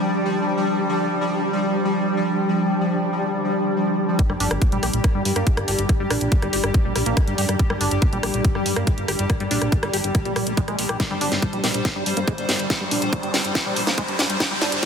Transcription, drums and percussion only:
4.19 kick loud
4.19 closed hi-hat medium
4.30 cross-stick soft
4.40 open hi-hat loud
4.51 cross-stick medium
4.51 closed hi-hat medium
4.62 kick loud
4.62 closed hi-hat medium
4.72 closed hi-hat soft
4.83 cross-stick soft
4.83 open hi-hat loud
4.93 closed hi-hat medium
5.04 kick loud
5.04 cross-stick medium
5.04 closed hi-hat medium
5.25 open hi-hat loud
5.36 cross-stick soft
5.36 closed hi-hat medium
5.47 kick loud
5.47 closed hi-hat medium
5.57 cross-stick medium
5.57 closed hi-hat soft
5.68 open hi-hat loud
5.79 closed hi-hat medium
5.89 kick loud
5.89 cross-stick soft
5.89 closed hi-hat medium
6.11 cross-stick medium
6.11 open hi-hat loud
6.21 closed hi-hat medium
6.32 kick loud
6.32 closed hi-hat medium
6.42 cross-stick soft
6.42 closed hi-hat soft
6.53 open hi-hat loud
6.64 cross-stick medium
6.64 closed hi-hat medium
6.74 kick loud
6.74 closed hi-hat medium
6.96 cross-stick soft
6.96 open hi-hat loud
7.06 closed hi-hat medium
7.17 kick loud
7.17 cross-stick medium
7.17 closed hi-hat medium
7.28 closed hi-hat soft
7.38 open hi-hat loud
7.49 cross-stick soft
7.49 closed hi-hat medium
7.59 kick loud
7.59 closed hi-hat medium
7.70 cross-stick medium
7.81 open hi-hat loud
7.91 closed hi-hat medium
8.02 kick loud
8.02 cross-stick soft
8.02 closed hi-hat medium
8.13 closed hi-hat soft
8.23 cross-stick medium
8.23 open hi-hat loud
8.34 closed hi-hat medium
8.45 kick loud
8.45 closed hi-hat medium
8.55 cross-stick soft
8.66 open hi-hat loud
8.76 cross-stick medium
8.76 closed hi-hat medium
8.87 kick loud
8.87 closed hi-hat medium
8.98 closed hi-hat soft
9.08 cross-stick soft
9.08 open hi-hat loud
9.19 closed hi-hat medium
9.30 kick loud
9.30 cross-stick medium
9.30 closed hi-hat medium
9.40 closed hi-hat soft
9.51 open hi-hat loud
9.62 cross-stick soft
9.62 closed hi-hat medium
9.72 kick loud
9.72 closed hi-hat medium
9.83 cross-stick medium
9.83 closed hi-hat soft
9.93 open hi-hat loud
10.04 closed hi-hat medium
10.15 kick loud
10.15 cross-stick soft
10.15 closed hi-hat medium
10.25 closed hi-hat soft
10.36 cross-stick medium
10.36 open hi-hat loud
10.47 closed hi-hat soft
10.57 kick loud
10.57 closed hi-hat medium
10.68 cross-stick soft
10.68 closed hi-hat soft
10.79 open hi-hat loud
10.89 cross-stick medium
10.89 closed hi-hat medium
11.00 kick loud
11.00 snare soft
11.00 closed hi-hat medium
11.21 open hi-hat loud
11.32 snare soft
11.32 closed hi-hat medium
11.42 kick loud
11.42 closed hi-hat medium
11.53 closed hi-hat soft
11.64 snare medium
11.64 open hi-hat loud
11.74 closed hi-hat medium
11.85 kick loud
11.85 snare medium
11.85 closed hi-hat medium
12.06 open hi-hat loud
12.17 closed hi-hat medium
12.28 kick loud
12.28 closed hi-hat medium
12.38 closed hi-hat soft
12.49 snare medium
12.49 open hi-hat loud
12.59 closed hi-hat medium
12.70 kick loud
12.70 snare medium
12.70 closed hi-hat medium
12.91 open hi-hat loud
13.02 closed hi-hat medium
13.13 kick loud
13.13 closed hi-hat medium
13.23 closed hi-hat soft
13.34 snare medium
13.34 open hi-hat loud
13.45 closed hi-hat medium
13.55 kick loud
13.55 snare medium
13.55 closed hi-hat medium
13.76 open hi-hat loud
13.87 snare medium
13.87 closed hi-hat medium
13.98 kick loud
13.98 closed hi-hat medium
14.08 closed hi-hat soft
14.19 snare medium
14.19 open hi-hat loud
14.30 closed hi-hat medium
14.40 kick loud
14.40 snare medium
14.40 closed hi-hat medium
14.62 snare medium
14.62 open hi-hat loud
14.72 closed hi-hat medium

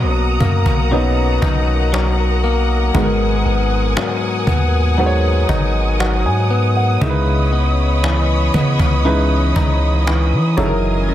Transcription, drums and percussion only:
0.40 cajon bass medium
0.66 cajon bass medium
0.90 cajon slap soft
1.42 cajon bass medium
1.94 cajon slap loud
2.43 cajon slap soft
2.95 cajon bass loud
3.97 cajon slap loud
4.47 cajon bass medium
4.97 cajon slap soft
5.49 cajon bass loud
6.00 cajon slap loud
6.17 cajon slap soft
6.34 cajon slap soft
6.49 cajon slap soft
7.01 cajon bass loud
8.04 cajon slap loud
8.54 cajon bass medium
8.79 cajon bass medium
9.04 cajon slap soft
9.56 cajon bass loud
10.07 cajon slap loud
10.58 cajon bass loud
11.08 cajon slap soft

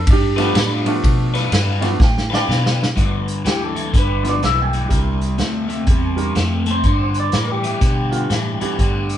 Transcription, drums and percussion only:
0.07 kick loud
0.07 ride loud
0.38 snare soft
0.38 ride medium
0.55 snare loud
0.55 ride medium
0.86 ride medium
1.04 kick loud
1.04 ride medium
1.35 snare soft
1.35 ride medium
1.52 snare loud
1.52 ride medium
1.82 snare soft
1.82 ride medium
2.00 kick loud
2.00 snare medium
2.18 snare medium
2.33 snare loud
2.51 snare medium
2.66 snare loud
2.83 snare loud
2.97 kick medium
2.97 closed hi-hat medium
3.28 closed hi-hat medium
3.46 snare loud
3.46 closed hi-hat medium
3.76 closed hi-hat medium
3.94 kick loud
3.94 snare soft
3.94 closed hi-hat medium
4.25 snare soft
4.25 closed hi-hat medium
4.43 snare medium
4.43 closed hi-hat medium
4.73 closed hi-hat medium
4.90 kick loud
4.90 closed hi-hat medium
5.21 closed hi-hat medium
5.38 snare loud
5.38 closed hi-hat medium
5.70 closed hi-hat medium
5.87 kick loud
5.87 closed hi-hat medium
6.18 closed hi-hat medium
6.35 snare loud
6.35 closed hi-hat medium
6.66 closed hi-hat medium
6.84 kick loud
6.84 closed hi-hat medium
7.14 closed hi-hat medium
7.32 snare medium
7.32 closed hi-hat medium
7.64 closed hi-hat medium
7.81 kick loud
7.81 snare soft
7.81 closed hi-hat medium
8.12 closed hi-hat medium
8.30 snare medium
8.30 closed hi-hat medium
8.61 closed hi-hat medium
8.79 kick medium
8.79 closed hi-hat medium
9.09 closed hi-hat medium

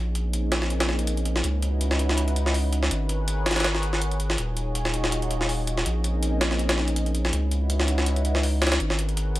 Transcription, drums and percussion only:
0.15 closed hi-hat medium
0.33 closed hi-hat medium
0.52 snare loud
0.52 closed hi-hat medium
0.62 snare soft
0.70 closed hi-hat medium
0.80 snare loud
0.80 closed hi-hat medium
0.89 snare soft
0.99 closed hi-hat medium
1.07 closed hi-hat medium
1.17 closed hi-hat soft
1.25 closed hi-hat medium
1.36 snare medium
1.44 closed hi-hat medium
1.62 closed hi-hat medium
1.81 closed hi-hat medium
1.91 snare medium
1.99 closed hi-hat medium
2.09 snare soft
2.17 closed hi-hat medium
2.28 closed hi-hat soft
2.36 closed hi-hat medium
2.46 snare soft
2.54 open hi-hat medium
2.73 closed hi-hat medium
2.83 snare soft
2.91 closed hi-hat medium
3.09 closed hi-hat medium
3.28 closed hi-hat medium
3.46 snare medium
3.46 closed hi-hat medium
3.51 snare medium
3.51 closed hi-hat medium
3.56 snare medium
3.56 closed hi-hat medium
3.60 snare medium
3.60 closed hi-hat medium
3.64 snare loud
3.64 closed hi-hat medium
3.75 snare soft
3.83 closed hi-hat medium
3.93 snare soft
4.01 closed hi-hat medium
4.11 closed hi-hat soft
4.20 closed hi-hat medium
4.30 snare medium
4.38 closed hi-hat medium
4.57 closed hi-hat medium
4.75 closed hi-hat medium
4.85 snare soft
4.94 closed hi-hat medium
5.04 snare soft
5.12 closed hi-hat medium
5.22 closed hi-hat soft
5.31 closed hi-hat medium
5.41 snare soft
5.49 open hi-hat medium
5.67 closed hi-hat medium
5.77 snare soft
5.86 closed hi-hat medium
6.04 closed hi-hat medium
6.23 closed hi-hat medium
6.41 snare loud
6.41 closed hi-hat medium
6.51 snare soft
6.59 closed hi-hat medium
6.69 snare loud
6.69 closed hi-hat medium
6.78 snare soft
6.88 closed hi-hat medium
6.96 closed hi-hat medium
7.06 closed hi-hat soft
7.15 closed hi-hat medium
7.25 snare medium
7.33 closed hi-hat medium
7.51 closed hi-hat medium
7.70 closed hi-hat medium
7.80 snare medium
7.88 closed hi-hat medium
7.98 snare soft
8.06 closed hi-hat medium
8.16 closed hi-hat soft
8.25 closed hi-hat medium
8.35 snare soft
8.43 open hi-hat medium
8.62 snare medium
8.62 closed hi-hat medium
8.67 snare medium
8.67 closed hi-hat medium
8.72 snare loud
8.72 closed hi-hat medium
8.80 closed hi-hat medium
8.90 snare soft
8.99 closed hi-hat medium
9.09 closed hi-hat soft
9.17 closed hi-hat medium
9.35 closed hi-hat medium

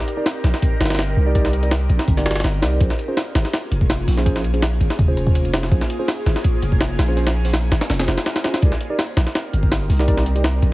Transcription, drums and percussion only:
0.08 closed hi-hat medium
0.26 snare loud
0.26 closed hi-hat medium
0.44 snare soft
0.44 closed hi-hat medium
0.54 snare soft
0.62 kick loud
0.62 closed hi-hat medium
0.81 snare medium
0.81 closed hi-hat medium
0.85 snare medium
0.85 closed hi-hat medium
0.90 snare medium
0.90 closed hi-hat medium
0.95 snare medium
0.95 closed hi-hat medium
0.99 snare loud
0.99 closed hi-hat medium
1.35 kick loud
1.35 closed hi-hat medium
1.45 snare soft
1.53 closed hi-hat medium
1.63 closed hi-hat soft
1.71 snare loud
1.71 closed hi-hat medium
1.90 closed hi-hat medium
1.99 snare medium
2.08 kick loud
2.08 closed hi-hat medium
2.17 snare soft
2.26 snare medium
2.26 closed hi-hat medium
2.31 snare medium
2.31 closed hi-hat medium
2.36 snare medium
2.36 closed hi-hat medium
2.40 snare medium
2.40 closed hi-hat medium
2.44 snare loud
2.44 closed hi-hat medium
2.62 snare loud
2.62 closed hi-hat medium
2.81 kick loud
2.81 closed hi-hat medium
2.90 snare soft
2.99 closed hi-hat medium
3.17 snare loud
3.17 closed hi-hat medium
3.35 snare loud
3.35 closed hi-hat medium
3.45 snare soft
3.53 snare loud
3.53 closed hi-hat medium
3.72 closed hi-hat medium
3.81 kick loud
3.90 snare loud
3.90 closed hi-hat medium
4.08 open hi-hat medium
4.18 snare soft
4.26 kick loud
4.26 closed hi-hat medium
4.36 snare soft
4.44 closed hi-hat medium
4.54 closed hi-hat soft
4.62 snare loud
4.62 closed hi-hat medium
4.81 closed hi-hat medium
4.90 snare soft
4.99 kick loud
4.99 closed hi-hat medium
5.17 closed hi-hat medium
5.27 kick loud
5.35 closed hi-hat medium
5.45 closed hi-hat soft
5.54 snare loud
5.54 closed hi-hat medium
5.63 snare soft
5.72 kick loud
5.72 closed hi-hat medium
5.81 snare soft
5.90 closed hi-hat medium
6.08 snare loud
6.08 closed hi-hat medium
6.26 snare soft
6.26 closed hi-hat medium
6.36 snare soft
6.44 kick loud
6.44 closed hi-hat medium
6.62 closed hi-hat medium
6.72 kick medium
6.81 snare loud
6.81 closed hi-hat medium
6.99 snare loud
6.99 closed hi-hat medium
7.17 open hi-hat medium
7.27 snare loud
7.27 closed hi-hat medium
7.45 open hi-hat medium
7.53 snare loud
7.53 closed hi-hat medium
7.72 snare loud
7.72 closed hi-hat medium
7.81 snare loud
7.81 closed hi-hat medium
7.90 snare loud
7.90 closed hi-hat medium
7.99 snare loud
7.99 closed hi-hat medium
8.08 snare loud
8.08 closed hi-hat medium
8.18 snare loud
8.18 closed hi-hat medium
8.26 snare loud
8.26 closed hi-hat medium
8.36 snare loud
8.36 closed hi-hat medium
8.44 snare loud
8.44 closed hi-hat medium
8.54 snare loud
8.54 closed hi-hat medium
8.62 kick loud
8.62 closed hi-hat medium
8.72 snare soft
8.81 closed hi-hat medium
8.99 snare loud
8.99 closed hi-hat medium
9.17 snare loud
9.17 closed hi-hat medium
9.27 snare soft
9.35 snare loud
9.35 closed hi-hat medium
9.53 closed hi-hat medium
9.63 kick loud
9.72 snare loud
9.72 closed hi-hat medium
9.90 open hi-hat medium
9.99 snare soft
10.08 kick loud
10.08 closed hi-hat medium
10.17 snare soft
10.26 closed hi-hat medium
10.36 closed hi-hat soft
10.44 snare loud
10.44 closed hi-hat medium
10.62 closed hi-hat medium

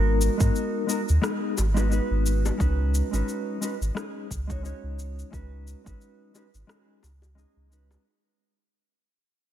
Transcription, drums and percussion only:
0.21 shaker medium
0.40 kick loud
0.40 shaker soft
0.56 shaker soft
0.89 shaker medium
1.09 shaker soft
1.23 cross-stick medium
1.23 shaker soft
1.58 high bongo medium
1.58 shaker medium
1.77 high bongo medium
1.77 shaker soft
1.92 shaker soft
2.26 shaker medium
2.45 high bongo medium
2.45 shaker soft
2.60 kick loud
2.60 shaker soft
2.95 shaker medium
3.14 shaker soft
3.28 shaker soft
3.62 shaker medium
3.82 shaker soft
3.97 cross-stick medium
3.97 shaker soft
4.31 kick medium
4.31 shaker medium
4.50 kick loud
4.50 shaker soft
4.65 shaker soft
4.99 shaker medium
5.19 shaker soft
5.33 kick loud
5.33 shaker soft
5.67 shaker medium
5.86 kick medium
5.86 shaker soft
6.01 shaker soft
6.35 high bongo medium
6.35 shaker medium
6.55 shaker soft
6.69 cross-stick medium
6.69 shaker soft
7.03 high bongo medium
7.03 shaker medium
7.22 high bongo medium
7.22 shaker soft
7.38 shaker soft
7.72 shaker medium
7.91 high bongo medium
7.91 shaker soft

